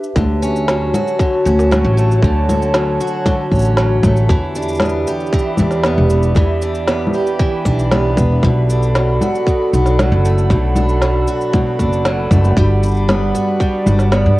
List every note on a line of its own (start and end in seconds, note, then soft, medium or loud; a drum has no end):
0.00 0.12 D4 medium
0.00 0.12 G4 medium
0.00 0.12 B4 medium
0.00 0.12 E5 medium
0.00 shaker soft
0.15 0.90 D2 medium
0.15 1.19 D3 medium
0.15 4.25 F#4 medium
0.15 4.25 C#5 medium
0.15 4.25 A5 medium
0.15 kick loud
0.15 low conga medium
0.15 shaker soft
0.42 1.44 C#4 medium
0.42 shaker medium
0.56 shaker soft
0.68 1.70 F#3 medium
0.68 snare loud
0.68 shaker soft
0.94 2.99 F#4 medium
0.94 low conga medium
0.94 shaker medium
1.07 shaker soft
1.19 2.24 D3 medium
1.19 kick loud
1.19 shaker soft
1.45 1.81 D2 loud
1.45 2.48 C#4 medium
1.45 shaker medium
1.59 snare soft
1.59 shaker soft
1.71 2.73 F#3 medium
1.71 snare loud
1.71 low conga medium
1.71 shaker soft
1.84 2.19 A1 loud
1.97 4.03 A3 medium
1.97 shaker medium
2.11 shaker soft
2.22 2.97 D2 medium
2.22 3.26 D3 medium
2.22 kick loud
2.22 shaker soft
2.49 3.50 C#4 medium
2.49 low conga medium
2.49 shaker medium
2.62 shaker soft
2.74 3.77 F#3 medium
2.74 snare loud
2.74 shaker soft
3.01 4.35 F#4 medium
3.01 shaker medium
3.07 shaker soft
3.25 5.37 D3 medium
3.25 kick loud
3.25 low conga medium
3.25 shaker soft
3.51 4.00 A1 medium
3.51 4.35 C#4 medium
3.51 kick medium
3.51 shaker soft
3.55 shaker soft
3.59 shaker medium
3.62 shaker medium
3.65 shaker soft
3.77 4.30 F#3 medium
3.77 snare loud
3.77 shaker soft
4.03 4.25 A1 medium
4.03 4.35 A3 medium
4.03 kick loud
4.03 low conga medium
4.03 shaker medium
4.17 shaker soft
4.28 5.03 E2 medium
4.28 5.32 E3 medium
4.28 8.39 G4 medium
4.28 8.38 E5 medium
4.28 14.40 B5 medium
4.28 kick loud
4.28 shaker soft
4.55 5.59 D4 medium
4.55 shaker medium
4.62 shaker medium
4.68 shaker medium
4.73 shaker soft
4.75 shaker soft
4.77 snare loud
4.77 low conga medium
4.77 shaker soft
4.80 5.85 B3 medium
4.80 shaker soft
4.85 shaker soft
4.89 shaker soft
5.07 7.13 G4 medium
5.07 shaker medium
5.20 shaker soft
5.27 shaker soft
5.33 6.36 E3 medium
5.33 kick loud
5.33 shaker soft
5.39 shaker soft
5.57 5.94 E2 loud
5.57 6.62 D4 medium
5.57 low conga medium
5.57 shaker medium
5.71 snare soft
5.71 shaker soft
5.84 6.10 B3 medium
5.84 snare loud
5.84 shaker soft
5.98 6.33 E1 loud
6.10 6.88 B3 medium
6.10 shaker medium
6.23 shaker soft
6.35 7.11 E2 medium
6.35 7.38 E3 medium
6.35 kick loud
6.35 low conga medium
6.35 shaker soft
6.62 7.66 D4 medium
6.62 shaker medium
6.75 shaker soft
6.88 7.92 B3 medium
6.88 snare medium
6.88 shaker soft
7.07 low conga medium
7.14 8.49 G4 medium
7.14 shaker medium
7.27 shaker soft
7.40 8.48 E3 medium
7.40 kick loud
7.40 shaker soft
7.65 8.14 B1 medium
7.65 8.69 D4 medium
7.65 kick medium
7.65 shaker medium
7.79 shaker soft
7.91 8.18 B3 medium
7.91 snare loud
7.91 low conga medium
7.91 shaker soft
8.17 8.39 E1 medium
8.17 10.25 B3 medium
8.17 kick loud
8.17 shaker medium
8.43 9.17 B1 medium
8.43 9.46 B2 medium
8.43 12.54 A4 medium
8.43 12.54 F#5 medium
8.43 kick loud
8.43 low conga medium
8.43 shaker soft
8.70 9.73 D4 medium
8.70 shaker medium
8.83 shaker soft
8.95 9.99 F#3 medium
8.95 snare medium
8.95 shaker soft
9.21 11.28 F#4 medium
9.21 low conga medium
9.21 shaker medium
9.35 shaker soft
9.47 10.50 B2 medium
9.47 kick loud
9.47 shaker soft
9.73 10.08 B1 medium
9.73 10.76 D4 medium
9.73 shaker medium
9.86 snare soft
9.86 shaker soft
9.99 11.02 F#3 medium
9.99 snare loud
9.99 low conga medium
9.99 shaker soft
10.12 10.47 F#1 loud
10.25 12.30 A3 medium
10.25 shaker medium
10.38 shaker soft
10.50 11.24 B1 medium
10.50 11.52 B2 medium
10.50 kick loud
10.50 shaker soft
10.75 11.79 D4 medium
10.75 low conga medium
10.75 shaker medium
10.89 shaker soft
11.02 12.05 F#3 medium
11.02 snare medium
11.02 shaker soft
11.28 13.34 F#4 medium
11.28 shaker medium
11.41 shaker soft
11.53 12.62 B2 medium
11.53 kick loud
11.53 low conga medium
11.53 shaker soft
11.79 12.28 F#1 medium
11.79 12.83 D4 medium
11.79 kick medium
11.79 shaker medium
11.93 shaker soft
12.05 12.57 F#3 medium
12.05 snare medium
12.05 shaker soft
12.31 12.53 F#1 medium
12.31 12.62 A3 medium
12.31 kick loud
12.31 low conga medium
12.31 shaker medium
12.45 shaker soft
12.57 13.31 G1 medium
12.57 14.40 G3 medium
12.57 13.59 G3 medium
12.57 14.40 D5 medium
12.57 14.40 F#5 medium
12.57 kick loud
12.57 shaker soft
12.83 13.86 D4 medium
12.83 shaker medium
12.86 shaker medium
12.88 shaker medium
12.91 shaker soft
12.94 shaker soft
12.97 shaker soft
13.09 14.11 B3 medium
13.09 snare loud
13.09 low conga medium
13.09 shaker soft
13.35 14.40 F#4 medium
13.35 shaker medium
13.60 14.40 G3 medium
13.60 kick loud
13.60 shaker soft
13.86 14.22 G1 loud
13.86 14.40 D4 medium
13.86 low conga medium
13.86 shaker medium
13.99 snare soft
13.99 shaker soft
14.12 14.37 B3 medium
14.12 snare loud
14.12 shaker soft
14.26 14.40 G2 loud